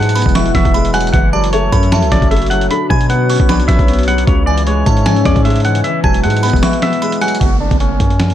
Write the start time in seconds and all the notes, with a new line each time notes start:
Already playing: G#2 E3 F#3 G#3 E4 F#5 A5
0.02 closed hi-hat
0.09 closed hi-hat
0.15 B3 B5, closed hi-hat, open hi-hat
0.22 E1, kick, closed hi-hat
0.29 closed hi-hat
0.34 E4 C#6, snare, closed hi-hat
0.46 closed hi-hat
0.55 E1 B3 E5, kick, snare, closed hi-hat
0.65 E1, kick, closed hi-hat
0.74 G#3 B5, closed hi-hat
0.85 closed hi-hat
0.93 F#3 F#5 G#5, closed hi-hat
1.01 closed hi-hat
1.07 closed hi-hat
1.13 F#1 E3 F#3 F#4 A4 E5 F#5, kick, closed hi-hat
1.33 F#3 D5 A5
1.44 closed hi-hat
1.53 A3 C#5, closed hi-hat
1.72 F#2 C#4 B5, kick, closed hi-hat
1.83 closed hi-hat
1.92 E4 A5, snare, closed hi-hat
2.02 C#2, closed hi-hat
2.11 F#1 C#4 D5, kick, snare, closed hi-hat
2.22 F#1, kick, closed hi-hat
2.31 A3 E5, closed hi-hat
2.36 closed hi-hat
2.42 closed hi-hat
2.46 F#5, closed hi-hat
2.51 F#3, closed hi-hat
2.61 closed hi-hat
2.70 D3 B3 B4 C#5 B5, closed hi-hat
2.89 B2 F#3 G#5 B5, kick
3.01 closed hi-hat
3.09 B3 F#5, closed hi-hat
3.29 C#4 C#6, open hi-hat
3.40 B1, kick, closed hi-hat
3.49 D4 B5, snare, closed hi-hat
3.60 closed hi-hat
3.68 B1 C#4 E5, kick, snare, closed hi-hat
3.79 B1, kick, closed hi-hat
3.88 B3, closed hi-hat
3.93 closed hi-hat
3.99 closed hi-hat
4.03 closed hi-hat
4.07 F#3 F#5, closed hi-hat
4.18 closed hi-hat
4.27 C#2 C#3 G#3 C#4 C#5 E5, kick, closed hi-hat
4.46 E3 D5 G#5
4.58 closed hi-hat
4.67 G#3 C#5, closed hi-hat
4.86 G#2 C#4 A5, kick, closed hi-hat
4.97 closed hi-hat
5.06 C#5 G#5, snare, closed hi-hat
5.16 closed hi-hat
5.25 E2 C#4 D5, kick, snare, closed hi-hat
5.36 G#2, kick, closed hi-hat
5.45 G#3 E5, closed hi-hat
5.50 closed hi-hat
5.56 closed hi-hat
5.60 closed hi-hat
5.65 E3 F#5, closed hi-hat
5.75 closed hi-hat
5.84 E3 B3 E5 F#5, closed hi-hat
6.04 E1 F#3 G#5 A5, kick
6.14 closed hi-hat
6.23 G#2 G#3 F#5, closed hi-hat
6.30 closed hi-hat
6.37 closed hi-hat
6.43 B3 B5, closed hi-hat, open hi-hat
6.50 E1, kick, closed hi-hat
6.56 closed hi-hat
6.62 E4 C#6, snare, closed hi-hat
6.73 closed hi-hat
6.82 B3 E5, snare, closed hi-hat
6.93 closed hi-hat
7.02 G#3 B5, closed hi-hat
7.12 closed hi-hat
7.21 F#3 F#5 G#5, closed hi-hat
7.28 closed hi-hat
7.35 closed hi-hat
7.40 F#1 F#4, kick, closed hi-hat, downlifter
7.61 D4
7.71 F#1, kick, closed hi-hat
7.80 C#4, closed hi-hat
8.00 F#2, kick, closed hi-hat
8.10 closed hi-hat
8.20 snare, closed hi-hat
8.30 closed hi-hat